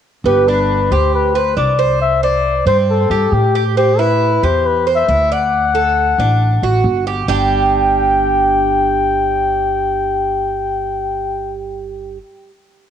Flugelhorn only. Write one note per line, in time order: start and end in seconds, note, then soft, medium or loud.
0.27 0.49 G4 medium
0.48 0.94 B4 medium
0.92 1.14 C5 medium
1.15 1.38 B4 medium
1.37 1.57 C5 medium
1.58 1.98 D5 medium
2.02 2.22 E5 loud
2.24 2.64 D5 medium
2.68 2.77 C5 medium
2.91 3.35 A4 medium
3.34 3.66 G4 medium
3.78 4.01 G4 medium
4.00 4.46 B4 medium
4.45 4.68 C5 medium
4.66 4.88 B4 medium
4.96 5.35 E5 loud
5.33 6.86 F#5 loud
7.30 11.56 G5 medium